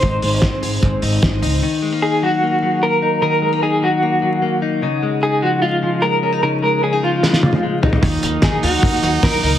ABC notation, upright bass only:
X:1
M:4/4
L:1/16
Q:1/4=150
K:Ebdor
V:1 name="Upright bass" clef=bass
A,,,2 A,,,3 z A,,,2 A,,,2 A,,,2 A,,,2 D,,2 | z16 | z16 | z16 |
z16 | E,,2 E,,2 E,,2 E,,2 E,,2 E,,2 E,,2 D,,2 |]